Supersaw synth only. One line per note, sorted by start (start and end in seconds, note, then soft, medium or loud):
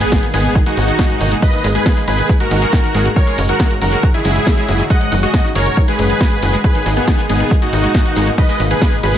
0.01 0.25 B3 medium
0.01 0.25 G#4 loud
0.34 0.58 B3 medium
0.34 0.58 G#4 loud
0.66 1.34 D#4 medium
0.66 1.34 F#4 loud
1.42 1.66 B4 medium
1.42 1.66 D#5 loud
1.75 1.99 G#4 medium
1.75 1.99 B4 loud
2.08 2.32 G#4 medium
2.08 2.32 B4 loud
2.40 3.08 F#4 medium
2.40 3.08 A#4 loud
3.16 3.40 A#4 medium
3.16 3.40 C#5 loud
3.49 3.73 F#4 medium
3.49 3.73 A#4 loud
3.82 4.05 F#4 medium
3.82 4.05 A#4 loud
4.14 4.82 E4 medium
4.14 4.82 G#4 loud
4.90 5.14 D#5 medium
4.90 5.14 F#5 loud
5.23 5.47 F#4 medium
5.23 5.47 D#5 loud
5.55 5.79 A#4 medium
5.55 5.79 C#5 loud
5.88 6.55 G#4 medium
5.88 6.55 B4 loud
6.64 6.88 G#4 medium
6.64 6.88 B4 loud
6.97 7.21 B3 medium
6.97 7.21 G#4 loud
7.29 7.53 B3 medium
7.29 7.53 G#4 loud
7.62 8.29 D#4 medium
7.62 8.29 F#4 loud
8.38 8.62 B4 medium
8.38 8.62 D#5 loud
8.71 8.95 G#4 medium
8.71 8.95 B4 loud
9.03 9.18 G#4 medium
9.03 9.18 B4 loud